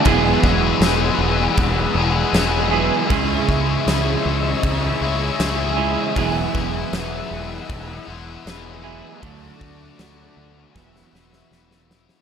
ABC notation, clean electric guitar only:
X:1
M:4/4
L:1/8
Q:1/4=78
K:E
V:1 name="Clean electric guitar"
[E,F,B,EG]6- [E,F,B,EG] [E,F,B,EG] | [C,G,CEG]6- [C,G,CEG] [C,G,CEG] | [E,F,B,EG]6- [E,F,B,EG] [E,F,B,EG] | [=D,F,A,=D]4 [E,F,B,E]4 |]